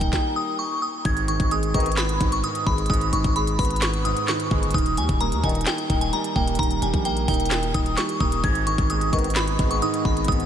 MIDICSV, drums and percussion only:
0, 0, Header, 1, 2, 480
1, 0, Start_track
1, 0, Key_signature, 5, "minor"
1, 0, Tempo, 461538
1, 1093, Time_signature, 4, 2, 24, 8
1, 10874, End_track
2, 0, Start_track
2, 0, Title_t, "Drums"
2, 12, Note_on_c, 9, 36, 94
2, 13, Note_on_c, 9, 42, 61
2, 116, Note_off_c, 9, 36, 0
2, 117, Note_off_c, 9, 42, 0
2, 133, Note_on_c, 9, 36, 115
2, 133, Note_on_c, 9, 38, 93
2, 237, Note_off_c, 9, 36, 0
2, 237, Note_off_c, 9, 38, 0
2, 1093, Note_on_c, 9, 36, 117
2, 1093, Note_on_c, 9, 42, 74
2, 1197, Note_off_c, 9, 36, 0
2, 1197, Note_off_c, 9, 42, 0
2, 1214, Note_on_c, 9, 42, 56
2, 1318, Note_off_c, 9, 42, 0
2, 1334, Note_on_c, 9, 42, 101
2, 1438, Note_off_c, 9, 42, 0
2, 1454, Note_on_c, 9, 36, 97
2, 1454, Note_on_c, 9, 42, 55
2, 1558, Note_off_c, 9, 36, 0
2, 1558, Note_off_c, 9, 42, 0
2, 1574, Note_on_c, 9, 42, 86
2, 1678, Note_off_c, 9, 42, 0
2, 1694, Note_on_c, 9, 42, 58
2, 1798, Note_off_c, 9, 42, 0
2, 1814, Note_on_c, 9, 36, 91
2, 1814, Note_on_c, 9, 42, 68
2, 1874, Note_off_c, 9, 42, 0
2, 1874, Note_on_c, 9, 42, 65
2, 1918, Note_off_c, 9, 36, 0
2, 1934, Note_off_c, 9, 42, 0
2, 1934, Note_on_c, 9, 42, 67
2, 1994, Note_off_c, 9, 42, 0
2, 1994, Note_on_c, 9, 42, 68
2, 2047, Note_on_c, 9, 39, 98
2, 2053, Note_on_c, 9, 38, 124
2, 2054, Note_off_c, 9, 42, 0
2, 2054, Note_on_c, 9, 42, 82
2, 2151, Note_off_c, 9, 39, 0
2, 2157, Note_off_c, 9, 38, 0
2, 2158, Note_off_c, 9, 42, 0
2, 2174, Note_on_c, 9, 42, 65
2, 2278, Note_off_c, 9, 42, 0
2, 2294, Note_on_c, 9, 42, 87
2, 2295, Note_on_c, 9, 36, 104
2, 2398, Note_off_c, 9, 42, 0
2, 2399, Note_off_c, 9, 36, 0
2, 2414, Note_on_c, 9, 42, 68
2, 2518, Note_off_c, 9, 42, 0
2, 2534, Note_on_c, 9, 42, 74
2, 2638, Note_off_c, 9, 42, 0
2, 2653, Note_on_c, 9, 42, 64
2, 2757, Note_off_c, 9, 42, 0
2, 2772, Note_on_c, 9, 36, 99
2, 2876, Note_off_c, 9, 36, 0
2, 2893, Note_on_c, 9, 42, 67
2, 2973, Note_off_c, 9, 42, 0
2, 2973, Note_on_c, 9, 42, 68
2, 3013, Note_on_c, 9, 36, 115
2, 3053, Note_off_c, 9, 42, 0
2, 3053, Note_on_c, 9, 42, 65
2, 3117, Note_off_c, 9, 36, 0
2, 3133, Note_off_c, 9, 42, 0
2, 3133, Note_on_c, 9, 42, 54
2, 3237, Note_off_c, 9, 42, 0
2, 3254, Note_on_c, 9, 42, 99
2, 3358, Note_off_c, 9, 42, 0
2, 3373, Note_on_c, 9, 42, 53
2, 3374, Note_on_c, 9, 36, 98
2, 3477, Note_off_c, 9, 42, 0
2, 3478, Note_off_c, 9, 36, 0
2, 3493, Note_on_c, 9, 42, 85
2, 3597, Note_off_c, 9, 42, 0
2, 3613, Note_on_c, 9, 42, 59
2, 3717, Note_off_c, 9, 42, 0
2, 3733, Note_on_c, 9, 36, 93
2, 3733, Note_on_c, 9, 42, 65
2, 3733, Note_on_c, 9, 46, 82
2, 3793, Note_off_c, 9, 42, 0
2, 3793, Note_on_c, 9, 42, 65
2, 3837, Note_off_c, 9, 36, 0
2, 3837, Note_off_c, 9, 46, 0
2, 3853, Note_off_c, 9, 42, 0
2, 3853, Note_on_c, 9, 42, 65
2, 3913, Note_off_c, 9, 42, 0
2, 3913, Note_on_c, 9, 42, 66
2, 3967, Note_on_c, 9, 39, 100
2, 3972, Note_on_c, 9, 38, 124
2, 3973, Note_off_c, 9, 42, 0
2, 3973, Note_on_c, 9, 42, 84
2, 4071, Note_off_c, 9, 39, 0
2, 4076, Note_off_c, 9, 38, 0
2, 4077, Note_off_c, 9, 42, 0
2, 4093, Note_on_c, 9, 42, 62
2, 4197, Note_off_c, 9, 42, 0
2, 4213, Note_on_c, 9, 42, 90
2, 4317, Note_off_c, 9, 42, 0
2, 4333, Note_on_c, 9, 42, 68
2, 4437, Note_off_c, 9, 42, 0
2, 4449, Note_on_c, 9, 39, 78
2, 4453, Note_on_c, 9, 42, 73
2, 4454, Note_on_c, 9, 38, 95
2, 4553, Note_off_c, 9, 39, 0
2, 4557, Note_off_c, 9, 42, 0
2, 4558, Note_off_c, 9, 38, 0
2, 4573, Note_on_c, 9, 42, 64
2, 4677, Note_off_c, 9, 42, 0
2, 4692, Note_on_c, 9, 36, 98
2, 4796, Note_off_c, 9, 36, 0
2, 4814, Note_on_c, 9, 42, 69
2, 4894, Note_off_c, 9, 42, 0
2, 4894, Note_on_c, 9, 42, 68
2, 4933, Note_on_c, 9, 36, 116
2, 4974, Note_off_c, 9, 42, 0
2, 4974, Note_on_c, 9, 42, 67
2, 5037, Note_off_c, 9, 36, 0
2, 5054, Note_off_c, 9, 42, 0
2, 5054, Note_on_c, 9, 42, 54
2, 5158, Note_off_c, 9, 42, 0
2, 5173, Note_on_c, 9, 42, 100
2, 5277, Note_off_c, 9, 42, 0
2, 5293, Note_on_c, 9, 42, 56
2, 5294, Note_on_c, 9, 36, 96
2, 5397, Note_off_c, 9, 42, 0
2, 5398, Note_off_c, 9, 36, 0
2, 5414, Note_on_c, 9, 42, 84
2, 5518, Note_off_c, 9, 42, 0
2, 5534, Note_on_c, 9, 42, 58
2, 5638, Note_off_c, 9, 42, 0
2, 5653, Note_on_c, 9, 36, 93
2, 5654, Note_on_c, 9, 42, 66
2, 5714, Note_off_c, 9, 42, 0
2, 5714, Note_on_c, 9, 42, 66
2, 5757, Note_off_c, 9, 36, 0
2, 5774, Note_off_c, 9, 42, 0
2, 5774, Note_on_c, 9, 42, 65
2, 5833, Note_off_c, 9, 42, 0
2, 5833, Note_on_c, 9, 42, 65
2, 5887, Note_on_c, 9, 39, 101
2, 5892, Note_on_c, 9, 38, 126
2, 5893, Note_off_c, 9, 42, 0
2, 5893, Note_on_c, 9, 42, 83
2, 5991, Note_off_c, 9, 39, 0
2, 5996, Note_off_c, 9, 38, 0
2, 5997, Note_off_c, 9, 42, 0
2, 6014, Note_on_c, 9, 42, 63
2, 6118, Note_off_c, 9, 42, 0
2, 6134, Note_on_c, 9, 36, 104
2, 6134, Note_on_c, 9, 42, 88
2, 6238, Note_off_c, 9, 36, 0
2, 6238, Note_off_c, 9, 42, 0
2, 6254, Note_on_c, 9, 42, 65
2, 6358, Note_off_c, 9, 42, 0
2, 6374, Note_on_c, 9, 42, 71
2, 6478, Note_off_c, 9, 42, 0
2, 6493, Note_on_c, 9, 42, 63
2, 6597, Note_off_c, 9, 42, 0
2, 6613, Note_on_c, 9, 36, 101
2, 6717, Note_off_c, 9, 36, 0
2, 6734, Note_on_c, 9, 42, 70
2, 6814, Note_off_c, 9, 42, 0
2, 6814, Note_on_c, 9, 42, 71
2, 6854, Note_on_c, 9, 36, 119
2, 6894, Note_off_c, 9, 42, 0
2, 6894, Note_on_c, 9, 42, 67
2, 6958, Note_off_c, 9, 36, 0
2, 6974, Note_off_c, 9, 42, 0
2, 6974, Note_on_c, 9, 42, 54
2, 7078, Note_off_c, 9, 42, 0
2, 7094, Note_on_c, 9, 42, 101
2, 7198, Note_off_c, 9, 42, 0
2, 7214, Note_on_c, 9, 36, 97
2, 7214, Note_on_c, 9, 42, 56
2, 7318, Note_off_c, 9, 36, 0
2, 7318, Note_off_c, 9, 42, 0
2, 7334, Note_on_c, 9, 42, 85
2, 7438, Note_off_c, 9, 42, 0
2, 7453, Note_on_c, 9, 42, 58
2, 7557, Note_off_c, 9, 42, 0
2, 7573, Note_on_c, 9, 36, 94
2, 7573, Note_on_c, 9, 42, 66
2, 7573, Note_on_c, 9, 46, 86
2, 7634, Note_off_c, 9, 42, 0
2, 7634, Note_on_c, 9, 42, 67
2, 7677, Note_off_c, 9, 36, 0
2, 7677, Note_off_c, 9, 46, 0
2, 7693, Note_off_c, 9, 42, 0
2, 7693, Note_on_c, 9, 42, 65
2, 7753, Note_off_c, 9, 42, 0
2, 7753, Note_on_c, 9, 42, 67
2, 7807, Note_on_c, 9, 39, 98
2, 7812, Note_on_c, 9, 38, 124
2, 7813, Note_off_c, 9, 42, 0
2, 7813, Note_on_c, 9, 42, 84
2, 7911, Note_off_c, 9, 39, 0
2, 7916, Note_off_c, 9, 38, 0
2, 7917, Note_off_c, 9, 42, 0
2, 7933, Note_on_c, 9, 42, 62
2, 8037, Note_off_c, 9, 42, 0
2, 8054, Note_on_c, 9, 42, 88
2, 8055, Note_on_c, 9, 36, 100
2, 8158, Note_off_c, 9, 42, 0
2, 8159, Note_off_c, 9, 36, 0
2, 8174, Note_on_c, 9, 42, 65
2, 8278, Note_off_c, 9, 42, 0
2, 8289, Note_on_c, 9, 39, 77
2, 8294, Note_on_c, 9, 38, 95
2, 8294, Note_on_c, 9, 42, 72
2, 8393, Note_off_c, 9, 39, 0
2, 8398, Note_off_c, 9, 38, 0
2, 8398, Note_off_c, 9, 42, 0
2, 8414, Note_on_c, 9, 42, 61
2, 8518, Note_off_c, 9, 42, 0
2, 8533, Note_on_c, 9, 36, 101
2, 8637, Note_off_c, 9, 36, 0
2, 8654, Note_on_c, 9, 42, 80
2, 8758, Note_off_c, 9, 42, 0
2, 8774, Note_on_c, 9, 36, 120
2, 8774, Note_on_c, 9, 42, 75
2, 8878, Note_off_c, 9, 36, 0
2, 8878, Note_off_c, 9, 42, 0
2, 8895, Note_on_c, 9, 42, 54
2, 8999, Note_off_c, 9, 42, 0
2, 9015, Note_on_c, 9, 42, 100
2, 9119, Note_off_c, 9, 42, 0
2, 9135, Note_on_c, 9, 36, 100
2, 9135, Note_on_c, 9, 42, 54
2, 9239, Note_off_c, 9, 36, 0
2, 9239, Note_off_c, 9, 42, 0
2, 9255, Note_on_c, 9, 42, 83
2, 9359, Note_off_c, 9, 42, 0
2, 9374, Note_on_c, 9, 42, 56
2, 9478, Note_off_c, 9, 42, 0
2, 9494, Note_on_c, 9, 36, 92
2, 9494, Note_on_c, 9, 42, 64
2, 9553, Note_off_c, 9, 42, 0
2, 9553, Note_on_c, 9, 42, 67
2, 9598, Note_off_c, 9, 36, 0
2, 9614, Note_off_c, 9, 42, 0
2, 9614, Note_on_c, 9, 42, 66
2, 9674, Note_off_c, 9, 42, 0
2, 9674, Note_on_c, 9, 42, 64
2, 9727, Note_on_c, 9, 39, 101
2, 9733, Note_on_c, 9, 38, 125
2, 9734, Note_off_c, 9, 42, 0
2, 9734, Note_on_c, 9, 42, 84
2, 9831, Note_off_c, 9, 39, 0
2, 9837, Note_off_c, 9, 38, 0
2, 9838, Note_off_c, 9, 42, 0
2, 9854, Note_on_c, 9, 42, 64
2, 9958, Note_off_c, 9, 42, 0
2, 9974, Note_on_c, 9, 42, 87
2, 9975, Note_on_c, 9, 36, 102
2, 10078, Note_off_c, 9, 42, 0
2, 10079, Note_off_c, 9, 36, 0
2, 10095, Note_on_c, 9, 42, 69
2, 10199, Note_off_c, 9, 42, 0
2, 10214, Note_on_c, 9, 42, 73
2, 10318, Note_off_c, 9, 42, 0
2, 10335, Note_on_c, 9, 42, 63
2, 10439, Note_off_c, 9, 42, 0
2, 10453, Note_on_c, 9, 36, 103
2, 10557, Note_off_c, 9, 36, 0
2, 10575, Note_on_c, 9, 42, 66
2, 10655, Note_off_c, 9, 42, 0
2, 10655, Note_on_c, 9, 42, 70
2, 10694, Note_on_c, 9, 36, 117
2, 10734, Note_off_c, 9, 42, 0
2, 10734, Note_on_c, 9, 42, 67
2, 10798, Note_off_c, 9, 36, 0
2, 10814, Note_off_c, 9, 42, 0
2, 10814, Note_on_c, 9, 42, 54
2, 10874, Note_off_c, 9, 42, 0
2, 10874, End_track
0, 0, End_of_file